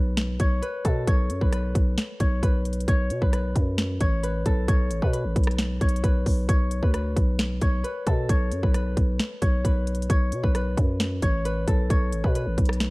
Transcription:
0.00 0.38 B1 loud
0.00 0.62 B4 medium
0.00 0.40 C#5 loud
0.17 snare loud
0.17 closed hi-hat medium
0.40 0.61 B1 loud
0.40 1.07 C#5 medium
0.40 kick loud
0.40 closed hi-hat medium
0.62 1.41 B4 medium
0.62 closed hi-hat medium
0.85 1.07 B2 loud
0.85 3.04 A4 medium
0.85 kick medium
0.85 closed hi-hat medium
1.07 1.31 B1 loud
1.07 2.19 C#5 loud
1.07 kick loud
1.07 closed hi-hat medium
1.30 1.41 F#2 medium
1.30 closed hi-hat medium
1.41 1.74 B1 loud
1.41 1.52 B4 medium
1.41 kick medium
1.53 2.42 B4 medium
1.53 cross-stick medium
1.53 closed hi-hat medium
1.75 1.97 B1 loud
1.75 kick medium
1.75 closed hi-hat medium
1.98 snare loud
1.98 closed hi-hat medium
2.20 2.42 B1 loud
2.20 2.88 C#5 medium
2.20 kick loud
2.20 closed hi-hat medium
2.43 2.86 B1 loud
2.43 3.21 B4 medium
2.43 kick loud
2.43 closed hi-hat medium
2.65 closed hi-hat medium
2.65 open hi-hat medium
2.73 closed hi-hat medium
2.80 closed hi-hat medium
2.88 3.12 B1 loud
2.88 4.00 C#5 loud
2.88 kick loud
2.88 closed hi-hat medium
3.10 3.21 B2 medium
3.10 closed hi-hat medium
3.21 3.54 B1 loud
3.21 3.33 B4 medium
3.21 kick medium
3.33 4.23 B4 medium
3.33 cross-stick medium
3.33 closed hi-hat medium
3.56 3.99 F#2 loud
3.56 kick medium
3.56 closed hi-hat medium
3.78 snare loud
3.78 closed hi-hat medium
4.00 4.44 A1 loud
4.00 4.68 C#5 medium
4.00 kick loud
4.00 closed hi-hat medium
4.23 5.03 B4 medium
4.23 closed hi-hat medium
4.46 4.67 B1 loud
4.46 6.65 A4 medium
4.46 kick medium
4.46 closed hi-hat medium
4.68 4.92 B1 loud
4.68 5.81 C#5 loud
4.68 kick loud
4.68 closed hi-hat medium
4.91 5.02 A1 loud
4.91 closed hi-hat medium
5.02 5.26 B2 loud
5.02 5.13 B4 medium
5.02 kick medium
5.13 6.03 B4 medium
5.13 closed hi-hat medium
5.25 5.35 A1 loud
5.36 5.79 B1 loud
5.36 kick medium
5.36 closed hi-hat medium
5.44 cross-stick loud
5.44 closed hi-hat medium
5.51 closed hi-hat medium
5.59 snare loud
5.59 closed hi-hat medium
5.81 6.03 B1 loud
5.81 6.48 C#5 medium
5.81 kick loud
5.81 closed hi-hat medium
5.89 closed hi-hat medium
5.96 closed hi-hat medium
6.04 6.25 B1 loud
6.04 6.82 B4 medium
6.04 kick loud
6.04 closed hi-hat medium
6.26 6.48 B1 loud
6.26 kick medium
6.26 open hi-hat medium
6.49 6.81 B1 loud
6.49 7.61 C#5 loud
6.49 kick loud
6.49 closed hi-hat medium
6.71 closed hi-hat medium
6.83 7.15 D2 loud
6.83 6.93 B4 medium
6.83 kick medium
6.94 7.83 B4 medium
6.94 cross-stick medium
6.94 closed hi-hat medium
7.16 7.60 B1 loud
7.16 kick loud
7.16 closed hi-hat medium
7.39 snare loud
7.39 closed hi-hat medium
7.61 7.83 B1 loud
7.61 8.29 C#5 medium
7.61 kick loud
7.61 closed hi-hat medium
7.84 8.63 B4 medium
7.84 closed hi-hat medium
8.06 8.28 B2 loud
8.06 10.26 A4 medium
8.06 kick medium
8.06 closed hi-hat medium
8.29 8.53 B1 loud
8.29 9.41 C#5 loud
8.29 kick loud
8.29 closed hi-hat medium
8.52 8.63 F#2 medium
8.52 closed hi-hat medium
8.63 8.96 B1 loud
8.63 8.74 B4 medium
8.63 kick medium
8.74 9.64 B4 medium
8.74 cross-stick medium
8.74 closed hi-hat medium
8.97 9.19 B1 loud
8.97 kick medium
8.97 closed hi-hat medium
9.19 snare loud
9.19 closed hi-hat medium
9.42 9.64 B1 loud
9.42 10.09 C#5 medium
9.42 kick loud
9.42 closed hi-hat medium
9.64 10.08 B1 loud
9.64 10.43 B4 medium
9.64 kick loud
9.64 closed hi-hat medium
9.87 closed hi-hat medium
9.87 open hi-hat medium
9.95 closed hi-hat medium
10.02 closed hi-hat medium
10.10 10.34 B1 loud
10.10 11.22 C#5 loud
10.10 kick loud
10.10 closed hi-hat medium
10.32 10.43 B2 medium
10.32 closed hi-hat medium
10.43 10.76 B1 loud
10.43 10.55 B4 medium
10.43 kick medium
10.55 11.45 B4 medium
10.55 cross-stick medium
10.55 closed hi-hat medium
10.77 11.21 F#2 loud
10.77 kick loud
10.77 closed hi-hat medium
11.00 snare loud
11.00 closed hi-hat medium
11.22 11.66 A1 loud
11.22 11.90 C#5 medium
11.22 kick loud
11.22 closed hi-hat medium
11.45 12.25 B4 medium
11.45 closed hi-hat medium
11.68 11.89 B1 loud
11.68 12.90 A4 medium
11.68 kick medium
11.68 closed hi-hat medium
11.90 12.14 B1 loud
11.90 12.90 C#5 loud
11.90 kick loud
11.90 closed hi-hat medium
12.12 12.23 A1 loud
12.12 closed hi-hat medium
12.24 12.48 B2 loud
12.24 12.35 B4 medium
12.24 kick medium
12.35 12.90 B4 medium
12.35 closed hi-hat medium
12.47 12.57 A1 loud
12.58 12.90 B1 loud
12.58 kick medium
12.58 closed hi-hat medium
12.65 cross-stick loud
12.65 closed hi-hat medium
12.73 closed hi-hat medium
12.80 snare loud
12.80 closed hi-hat medium

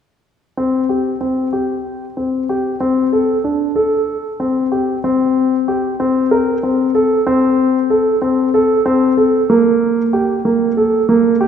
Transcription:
0.57 0.83 C4 medium
0.89 1.15 G4 soft
1.21 1.46 C4 soft
1.53 2.04 G4 soft
2.17 2.42 C4 soft
2.49 2.75 G4 soft
2.80 3.06 C4 medium
3.13 3.38 A4 medium
3.44 3.70 D4 medium
3.76 4.27 A4 medium
4.40 4.66 C4 medium
4.72 4.97 G4 medium
5.04 5.55 C4 medium
5.68 5.93 G4 medium
6.00 6.25 C4 medium
6.31 6.57 A#4 medium
6.63 6.89 C4 medium
6.95 7.20 A4 medium
7.27 7.78 C4 medium
7.90 8.16 A4 medium
8.22 8.48 C4 medium
8.54 8.80 A4 medium
8.86 9.11 C4 medium
9.17 9.43 A4 medium
9.50 10.01 A#3 medium
10.13 10.39 G4 medium
10.45 10.71 A#3 medium
10.77 11.03 A4 medium
11.09 11.34 A#3 medium
11.41 11.48 G4 medium

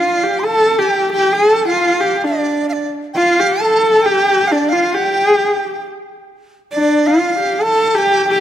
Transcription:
0.00 0.25 F4 medium
0.00 0.41 F5 medium
0.24 0.46 G4 medium
0.39 0.46 C6 medium
0.45 0.80 A4 loud
0.45 0.79 A5 medium
0.78 1.12 G4 medium
0.78 1.11 G5 medium
1.13 1.34 G4 loud
1.13 1.37 G5 medium
1.33 1.68 A4 loud
1.33 1.70 A5 medium
1.68 2.02 F4 medium
1.68 2.25 F5 medium
2.01 2.25 G4 medium
2.24 2.91 D4 medium
2.24 2.67 D5 medium
2.69 2.90 D5 medium
2.69 2.74 F5 medium
3.13 3.41 F4 loud
3.13 3.63 F5 medium
3.13 3.18 G5 medium
3.40 3.61 G4 medium
3.62 4.07 A4 loud
3.62 4.04 A5 medium
4.02 4.53 G4 loud
4.02 4.49 G5 medium
4.48 4.53 F5 medium
4.52 4.74 D4 medium
4.52 4.70 D5 medium
4.69 4.96 F4 loud
4.69 4.95 F5 medium
4.93 5.84 G4 medium
4.93 5.05 F#5 medium
5.05 5.83 G5 medium
6.71 7.08 D4 medium
6.71 7.08 D5 medium
7.06 7.39 F4 medium
7.06 7.64 F5 medium
7.40 7.63 G4 medium
7.62 7.96 A4 loud
7.62 7.99 A5 medium
7.95 8.28 G4 loud
7.95 8.31 G5 medium
8.29 8.40 G4 loud
8.29 8.40 G5 medium

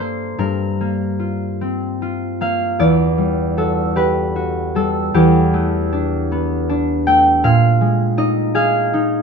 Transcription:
0.00 0.38 G2 medium
0.00 0.80 A#3 soft
0.00 1.36 D4 soft
0.00 0.43 A4 soft
0.00 0.38 A#4 soft
0.00 2.83 C5 medium
0.00 2.78 D5 medium
0.00 1.82 F5 medium
0.38 2.83 G2 medium
0.38 2.83 A#4 medium
0.81 2.40 A#3 soft
1.19 2.01 F4 soft
1.61 2.83 C4 soft
2.02 2.83 F4 soft
2.41 2.83 A#3 soft
2.41 2.83 F5 medium
2.79 5.13 E2 medium
2.79 6.70 D5 medium
3.18 4.74 G3 soft
3.57 4.35 F#4 soft
3.57 4.74 A4 medium
3.96 5.13 G4 medium
3.96 7.46 B4 medium
4.36 5.17 F#4 soft
4.75 7.46 G3 soft
4.75 7.46 A4 medium
5.14 7.46 E2 medium
5.14 7.46 G4 medium
5.54 7.06 A3 soft
5.92 6.68 D4 soft
6.32 7.47 B3 medium
6.69 7.47 D4 medium
7.07 7.47 A3 medium
7.07 7.47 G5 medium
7.44 9.22 A#2 medium
7.44 8.54 F5 medium
7.81 9.22 G#3 soft
8.18 8.92 D#4 medium
8.18 9.22 D#5 medium
8.55 9.22 G#4 medium
8.55 9.22 F5 medium
8.93 9.22 D#4 medium

